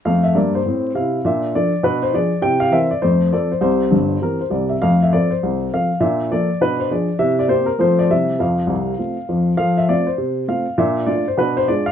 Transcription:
X:1
M:4/4
L:1/8
Q:"Swing" 1/4=201
K:F
V:1 name="Upright piano"
f e d c3 f2 | e2 d2 =B c d2 | g f e d c2 d c | c4 B c d e |
f e d c3 f2 | e2 d2 =B c d2 | e d c B c d e2 | f6- f z |
f e d c3 f2 | e2 d c =B c d f |]
V:2 name="Upright piano"
[F,,A,]2 [G,,B,]2 [A,,C]2 [C,E]2 | [B,,D]2 [F,DA]2 [=B,,D]2 [F,D^G]2 | [C,E]2 [E,CB]2 [F,,A,]2 [F,CA]2 | [C,,C,]2 [G,,,G,,]2 [E,CG]2 [C,,C,]2 |
[F,,A,]2 [F,CA]2 C,,2 [F,CA]2 | [B,,D]2 [F,B,A]2 [=B,,D]2 [F,D^G]2 | [C,E]2 [B,CG]2 [F,A,CFA]2 [C,G,CEG]2 | [F,,F,]2 [C,,C,]2 [A,CF]2 [F,,F,]2 |
[F,A]2 [A,CF]2 C,2 [A,CF]2 | [B,,D]2 [A,DF]2 [=B,,D]2 [^G,DF]2 |]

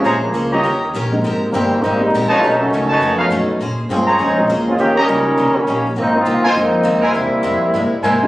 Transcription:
X:1
M:4/4
L:1/8
Q:"Swing" 1/4=203
K:Ab
V:1 name="Trumpet section"
[Acdb] z2 [Gdeb]3 z2 | z6 z [E=Bd=a]- | [E=Bd=a]2 z [^DB^ca]2 [DBcf] z2 | z3 [Acdb]3 z2 |
z [Gdeb] z6 | z3 [FBca] z3 [=EBca] | z6 [=EBca]2 |]
V:2 name="Grand piano"
z3 [G,B,DEF] z3 [A,B,CEB]- | [A,B,CEB]2 z3 [A,B,CEG]3 | z4 z [=A,=B,^C^D^F]3 | z4 z [A,B,CDF]3 |
z2 [G,B,DEF] z4 z | z4 [A,B,CEF]3 z | z6 z [A,CEFG] |]
V:3 name="Steel-string acoustic guitar"
[B,DAc] z [B,DAc] z [E,DGB] z [E,DGB] z | [A,CGB] z [A,CGB] z [A,CGB] z [A,CGB] z | [=B,,=A,^C^D] z [B,,A,CD] z [B,,A,CD] z [B,,A,CD] z | [B,DAc] z [B,DAc] z [B,DAc] z [B,DAc] z |
[E,B,DG] z [E,B,DG] z [E,B,DG] z [E,B,DG] z | [A,,F,B,C] z [A,,F,B,C] z [A,,F,B,C] z [A,,F,B,C] z | [C,A,B,=E] z [C,A,B,E] z [C,A,B,E] z [C,A,B,E] z |]
V:4 name="Trombone section"
[C,F,A,D] [D,F,A,B,]3 z4 | z2 [E,G,B,C]2 [G,B,CE]2 z [G,B,DF] | [^F,=A,^C^D] [^D,F,A,C]6 z | z2 [D,F,A,C]2 [A,CDE]2 z [A,CDF] |
[E,B,DG] [G,DEB]4 [E,G,B,D]2 z | [F,B,CE] [B,CEF]2 [F,B,CE]4 [G,B,C=E]- | [G,B,C=E]6 z2 |]
V:5 name="Upright bass" clef=bass
B,,,2 D,,2 E,,2 B,,,2 | A,,,2 G,,,2 A,,,2 B,,, z | =B,,,2 ^C,,2 F,,2 ^F,,2 | B,,2 G,,2 (3F,, D,, B,,, =E,,2 |
E,,2 D,,2 C,, z B,,,2 | A,,,2 C,, z F,,2 E,,2 | =E,, z F,, z G,, z A,,2 |]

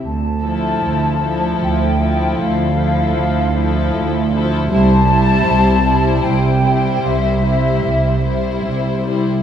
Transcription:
X:1
M:3/4
L:1/8
Q:1/4=77
K:Dm
V:1 name="Flute section"
a4 g2 | f4- f z | a4 g2 | e4 z2 |]
V:2 name="Violin section"
z A2 A2 A- | A A2 A2 A | c c2 c2 c- | c c2 c2 c |]
V:3 name="Violin section"
z E2 E2 E- | E E2 E2 E | E E2 E2 E- | E E2 E2 E |]
V:4 name="Viola section" clef=bass
z F,2 F,2 F,- | F, F,2 F,2 F, | G, G,2 G,2 G,- | G, G,2 G,2 G, |]
V:5 name="Cello section" clef=bass
D,,2 D,,2 D,,2 | D,,2 D,,2 D,,2 | C,,2 C,,2 C,,2 | C,,2 C,,2 C,,2 |]
V:6 name="Double bass section" clef=bass
D,,2 D,,2 D,,2 | D,,2 D,,2 D,,2 | C,,2 C,,2 C,,2 | C,,2 C,,2 C,,2 |]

